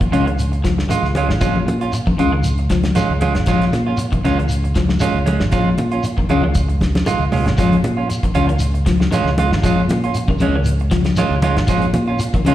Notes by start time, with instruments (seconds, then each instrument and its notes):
0.01 fingered electric bass A#1, clean electric guitar D#3, muted clean electric guitar stroke, kick, closed hi-hat
0.12 fingered electric bass C#2, clean electric guitar C#3 G#3 C#4 F4, closed hi-hat, high conga, shekere
0.26 clean electric guitar D#3, muted clean electric guitar stroke, closed hi-hat
0.39 closed hi-hat, shekere
0.52 muted clean electric guitar stroke, closed hi-hat
0.64 clean electric guitar F3, muted clean electric guitar stroke, kick, snare, closed hi-hat, shekere
0.78 muted clean electric guitar stroke, snare
0.89 clean electric guitar D#3 G#3 F4, closed hi-hat, high conga, shekere
1.02 fingered electric bass C#2, snare
1.15 clean electric guitar G#3 C#4 F4, closed hi-hat, high conga, shekere
1.28 fingered electric bass G#1, muted clean electric guitar stroke, snare
1.41 fingered electric bass A#1, clean electric guitar F3 G#3 C#4 F4, kick, snare, closed hi-hat, shekere
1.56 high conga
1.66 fingered electric bass A#2, muted clean electric guitar stroke, closed hi-hat, high conga, shekere
1.81 clean electric guitar C#4 F4, closed hi-hat
1.93 muted clean electric guitar stroke, closed hi-hat, shekere
2.07 fingered electric bass A#1, clean electric guitar D#3, muted clean electric guitar stroke, kick, high conga
2.18 fingered electric bass C#2, clean electric guitar C#3 G#3 F4, muted clean electric guitar stroke, closed hi-hat, high conga, shekere
2.33 clean electric guitar D#3, muted clean electric guitar stroke
2.44 closed hi-hat, shekere
2.58 muted clean electric guitar stroke, closed hi-hat
2.70 clean electric guitar F3, muted clean electric guitar stroke, kick, snare, closed hi-hat, shekere
2.83 muted clean electric guitar stroke, snare, closed hi-hat
2.95 clean electric guitar D#3 G#3 C#4 F4, closed hi-hat, high conga, shekere
3.10 fingered electric bass C#2
3.21 clean electric guitar G#3 C#4 F4, closed hi-hat, high conga, shekere
3.35 fingered electric bass G#1, muted clean electric guitar stroke, snare, closed hi-hat
3.46 fingered electric bass A#1, clean electric guitar F3 G#3 C#4 F4, kick, snare, closed hi-hat, shekere
3.61 snare, closed hi-hat
3.73 fingered electric bass A#2, muted clean electric guitar stroke, snare, closed hi-hat, high conga, shekere
3.87 clean electric guitar C#4 F4
3.97 muted clean electric guitar stroke, closed hi-hat, shekere
4.12 fingered electric bass A#1, clean electric guitar D#3, muted clean electric guitar stroke, kick, closed hi-hat
4.24 fingered electric bass C#2, clean electric guitar C#3 G#3 C#4 F4, snare, closed hi-hat, high conga, shekere
4.39 clean electric guitar D#3, muted clean electric guitar stroke, closed hi-hat
4.49 closed hi-hat, shekere
4.64 muted clean electric guitar stroke, closed hi-hat
4.75 clean electric guitar F3, muted clean electric guitar stroke, kick, snare, closed hi-hat, shekere
4.89 muted clean electric guitar stroke, snare
5.00 clean electric guitar D#3 G#3 C#4 F4, closed hi-hat, high conga, shekere
5.14 fingered electric bass C#2
5.26 clean electric guitar G#3 C#4, closed hi-hat, high conga, shekere
5.40 fingered electric bass G#1, muted clean electric guitar stroke, snare
5.52 fingered electric bass A#1, clean electric guitar F3 G#3 C#4 F4, kick, closed hi-hat, shekere
5.78 fingered electric bass A#2, muted clean electric guitar stroke, closed hi-hat, high conga, shekere
5.91 clean electric guitar C#4 F4, closed hi-hat
6.03 muted clean electric guitar stroke, closed hi-hat, shekere
6.17 fingered electric bass A#1, clean electric guitar D#3, muted clean electric guitar stroke, kick
6.29 fingered electric bass C#2, clean electric guitar C#3 G#3 C#4 F4, closed hi-hat, high conga, shekere
6.43 clean electric guitar D#3, muted clean electric guitar stroke, high conga
6.55 kick, closed hi-hat, shekere
6.68 muted clean electric guitar stroke, closed hi-hat
6.81 muted clean electric guitar stroke, kick, snare, closed hi-hat, high conga, shekere
6.95 muted clean electric guitar stroke, snare, closed hi-hat, high conga
7.06 clean electric guitar D#3 G#3 F4, muted clean electric guitar stroke, closed hi-hat, high conga, shekere
7.19 fingered electric bass C#2
7.32 clean electric guitar G#3 C#4 F4, open hi-hat, low conga, shekere
7.46 fingered electric bass G#1, muted clean electric guitar stroke, snare, closed hi-hat, low conga
7.58 fingered electric bass A#1, clean electric guitar F3 G#3 C#4 F4, kick, snare, closed hi-hat, shekere
7.72 closed hi-hat, high conga
7.83 fingered electric bass A#2, muted clean electric guitar stroke, closed hi-hat, high conga, shekere
7.97 clean electric guitar C#4 F4
8.09 muted clean electric guitar stroke, closed hi-hat, shekere
8.23 fingered electric bass A#1, clean electric guitar D#3, muted clean electric guitar stroke, kick, closed hi-hat
8.35 fingered electric bass C#2, clean electric guitar C#3 C#4 F4, closed hi-hat, high conga, shekere
8.47 clean electric guitar D#3, muted clean electric guitar stroke, closed hi-hat
8.59 closed hi-hat, shekere
8.74 muted clean electric guitar stroke, closed hi-hat
8.86 clean electric guitar F3, muted clean electric guitar stroke, kick, snare, closed hi-hat, shekere
9.00 muted clean electric guitar stroke, snare
9.11 clean electric guitar D#3 G#3 C#4 F4, closed hi-hat, high conga, shekere
9.24 fingered electric bass C#2, snare
9.38 clean electric guitar G#3 F4, muted clean electric guitar stroke, closed hi-hat, high conga, shekere
9.50 fingered electric bass G#1, muted clean electric guitar stroke, snare
9.63 fingered electric bass A#1, clean electric guitar F3 G#3 C#4 F4, kick, closed hi-hat, shekere
9.88 fingered electric bass A#2, muted clean electric guitar stroke, snare, closed hi-hat, high conga, shekere
10.04 clean electric guitar C#4 F4, closed hi-hat
10.14 muted clean electric guitar stroke, closed hi-hat, shekere
10.28 fingered electric bass A#1, clean electric guitar D#3, muted clean electric guitar stroke, kick, high conga
10.39 fingered electric bass C#2, clean electric guitar C#3 G#3 C#4, muted clean electric guitar stroke, closed hi-hat, high conga, shekere
10.55 clean electric guitar D#3, muted clean electric guitar stroke
10.64 closed hi-hat, shekere
10.80 muted clean electric guitar stroke, closed hi-hat
10.90 clean electric guitar F3, muted clean electric guitar stroke, kick, snare, closed hi-hat, shekere
11.05 muted clean electric guitar stroke, snare, closed hi-hat
11.16 clean electric guitar D#3 G#3 C#4 F4, closed hi-hat, high conga, shekere
11.30 fingered electric bass C#2
11.42 clean electric guitar G#3 C#4 F4, closed hi-hat, high conga, shekere
11.55 fingered electric bass G#1, muted clean electric guitar stroke, snare, closed hi-hat
11.67 fingered electric bass A#1, clean electric guitar F3 G#3 C#4 F4, kick, closed hi-hat, shekere
11.82 closed hi-hat
11.93 fingered electric bass A#2, muted clean electric guitar stroke, closed hi-hat, high conga, shekere
12.08 clean electric guitar C#4 F4
12.19 muted clean electric guitar stroke, closed hi-hat, shekere
12.34 fingered electric bass A#1, clean electric guitar D#3, muted clean electric guitar stroke, kick, closed hi-hat
12.45 fingered electric bass C#2, clean electric guitar C#3 G#3 C#4 F4, closed hi-hat, high conga, shekere